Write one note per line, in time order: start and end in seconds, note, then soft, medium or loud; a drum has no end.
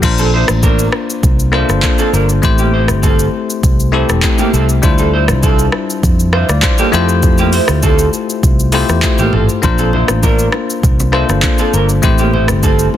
0.02 0.43 A#1 loud
0.02 1.00 A#3 medium
0.02 1.00 D4 medium
0.02 1.01 F4 medium
0.02 1.01 A#4 medium
0.02 1.01 C5 medium
0.02 kick loud
0.02 crash loud
0.02 shaker medium
0.18 0.30 C4 medium
0.18 0.29 A4 medium
0.18 shaker medium
0.34 0.45 E4 medium
0.34 0.45 C5 medium
0.48 0.87 A1 medium
0.48 cross-stick loud
0.48 shaker medium
0.63 0.85 D4 medium
0.63 0.85 A#4 medium
0.63 kick medium
0.63 shaker medium
0.79 shaker medium
0.92 cross-stick loud
1.10 shaker medium
1.23 1.63 C2 loud
1.23 kick loud
1.23 shaker medium
1.39 shaker medium
1.52 2.26 A#3 medium
1.52 2.26 D4 medium
1.52 1.65 E4 medium
1.52 2.27 F4 medium
1.52 2.27 A4 medium
1.52 1.65 C5 medium
1.52 2.27 C5 medium
1.52 cross-stick loud
1.69 1.81 G1 loud
1.69 cross-stick medium
1.69 shaker medium
1.82 kick medium
1.82 clap medium
1.82 shaker medium
1.98 2.10 C4 medium
1.98 2.09 A4 medium
1.98 shaker medium
2.13 2.39 G1 medium
2.13 2.25 D4 medium
2.13 2.25 A#4 medium
2.13 shaker medium
2.29 shaker medium
2.42 2.90 A1 loud
2.42 3.40 A3 medium
2.42 3.40 C4 medium
2.42 3.41 E4 medium
2.42 3.41 G4 medium
2.42 3.41 C5 loud
2.42 kick loud
2.42 shaker medium
2.58 2.70 A#3 medium
2.58 2.69 G4 medium
2.58 shaker medium
2.74 2.85 E4 medium
2.74 2.85 C5 medium
2.88 3.27 G1 medium
2.88 cross-stick loud
2.88 shaker medium
3.03 3.25 C4 medium
3.03 3.25 A4 medium
3.03 kick medium
3.03 shaker medium
3.19 shaker medium
3.50 shaker medium
3.63 4.03 C2 loud
3.63 kick loud
3.63 shaker medium
3.80 shaker medium
3.92 4.66 A3 medium
3.92 4.66 C4 medium
3.92 4.67 E4 medium
3.92 4.05 E4 medium
3.92 4.67 G4 medium
3.92 4.67 A4 medium
3.92 4.05 C5 medium
4.09 4.21 E1 medium
4.09 cross-stick medium
4.09 shaker medium
4.22 kick medium
4.22 clap medium
4.22 shaker medium
4.38 4.50 A#3 medium
4.38 4.49 G4 medium
4.38 shaker medium
4.53 4.79 C2 loud
4.53 4.65 C4 medium
4.53 4.65 A4 medium
4.53 shaker medium
4.69 shaker medium
4.82 5.31 D2 loud
4.82 5.80 G3 medium
4.82 5.80 D4 medium
4.82 5.81 E4 medium
4.82 5.81 F4 medium
4.82 5.81 C5 medium
4.82 kick loud
4.82 shaker medium
4.98 5.10 C4 medium
4.98 5.09 A4 medium
4.98 shaker medium
5.13 5.25 E4 medium
5.13 5.25 C5 medium
5.28 5.67 C2 loud
5.28 cross-stick loud
5.28 shaker medium
5.43 5.65 C4 medium
5.43 5.65 A4 medium
5.43 kick medium
5.43 shaker medium
5.59 shaker medium
5.72 cross-stick loud
5.90 shaker medium
6.03 6.43 F2 loud
6.03 kick loud
6.03 shaker medium
6.20 shaker medium
6.33 6.45 E4 medium
6.33 6.45 C5 medium
6.33 6.48 F5 medium
6.33 cross-stick loud
6.49 6.61 D2 medium
6.49 6.62 D5 medium
6.49 cross-stick medium
6.49 shaker medium
6.62 6.78 C5 medium
6.62 kick medium
6.62 clap medium
6.62 shaker medium
6.78 6.90 A#3 medium
6.78 6.89 G4 medium
6.78 7.07 A4 medium
6.78 shaker medium
6.92 7.58 F2 loud
6.92 7.90 A3 loud
6.92 7.05 C4 medium
6.92 7.90 E4 medium
6.92 7.91 F4 medium
6.92 7.91 G4 medium
6.92 7.05 A4 medium
6.92 7.91 C5 loud
6.92 shaker medium
7.09 shaker medium
7.23 kick loud
7.23 shaker medium
7.38 7.50 A#3 medium
7.38 7.49 G4 medium
7.38 shaker medium
7.53 7.65 E4 medium
7.53 7.65 C5 medium
7.53 open hi-hat medium
7.53 shaker medium
7.68 8.07 D2 loud
7.68 cross-stick loud
7.68 shaker medium
7.83 8.05 C4 medium
7.83 8.05 A4 medium
7.83 kick medium
7.83 shaker medium
7.99 shaker medium
8.13 shaker medium
8.30 shaker medium
8.43 8.83 C2 loud
8.43 kick loud
8.43 shaker medium
8.59 shaker medium
8.72 9.46 A3 medium
8.72 8.85 C4 medium
8.72 9.46 E4 medium
8.72 9.47 F4 medium
8.72 9.47 G4 medium
8.72 8.85 A4 medium
8.72 9.47 C5 loud
8.72 open hi-hat medium
8.72 shaker medium
8.89 9.01 E2 medium
8.89 cross-stick medium
8.89 shaker medium
9.02 kick medium
9.02 clap medium
9.02 shaker medium
9.18 9.31 A1 medium
9.18 9.30 A#3 medium
9.18 9.29 G4 medium
9.18 shaker medium
9.33 9.47 A1 loud
9.33 9.45 C4 medium
9.33 9.45 A4 medium
9.33 mid tom loud
9.49 shaker medium
9.62 10.03 A#1 loud
9.62 10.60 A#3 medium
9.62 10.60 D4 medium
9.62 10.61 F4 medium
9.62 10.61 A#4 medium
9.62 10.61 C5 medium
9.62 kick loud
9.62 low conga medium
9.62 shaker medium
9.78 9.90 C4 medium
9.78 9.89 A4 medium
9.78 shaker medium
9.93 10.05 E4 medium
9.93 10.04 C5 medium
9.93 low bongo soft
9.93 low conga medium
10.08 10.47 A1 medium
10.08 cross-stick loud
10.08 low bongo medium
10.08 shaker medium
10.23 10.45 D4 medium
10.23 10.45 A#4 medium
10.23 kick medium
10.23 high bongo medium
10.23 shaker medium
10.39 shaker medium
10.52 cross-stick loud
10.52 high bongo medium
10.70 shaker medium
10.83 11.23 C2 loud
10.83 kick loud
10.83 low conga medium
10.83 shaker medium
11.00 low bongo medium
11.00 shaker medium
11.12 11.86 A#3 medium
11.12 11.86 D4 medium
11.12 11.25 E4 medium
11.12 11.87 F4 medium
11.12 11.87 A4 medium
11.12 11.25 C5 medium
11.12 11.87 C5 medium
11.12 cross-stick loud
11.29 11.41 G1 medium
11.29 cross-stick medium
11.29 low bongo medium
11.29 shaker medium
11.42 kick medium
11.42 clap medium
11.42 high bongo medium
11.42 shaker medium
11.58 11.70 C4 medium
11.58 11.69 A4 medium
11.58 shaker medium
11.73 11.99 G1 medium
11.73 11.85 D4 medium
11.73 11.85 A#4 medium
11.73 shaker medium
11.89 shaker medium
12.02 12.50 A1 loud
12.02 12.97 A3 medium
12.02 12.97 C4 medium
12.02 12.97 E4 medium
12.02 12.97 G4 medium
12.02 12.97 C5 loud
12.02 kick loud
12.02 low conga medium
12.02 shaker medium
12.18 12.30 A#3 medium
12.18 12.29 G4 medium
12.18 shaker medium
12.33 12.45 E4 medium
12.33 12.45 C5 medium
12.33 low bongo soft
12.33 low conga medium
12.48 12.87 G1 loud
12.48 cross-stick loud
12.48 low bongo medium
12.48 shaker medium
12.63 12.86 C4 medium
12.63 12.85 A4 medium
12.63 kick medium
12.63 high bongo medium
12.63 shaker medium
12.79 shaker medium
12.94 high bongo medium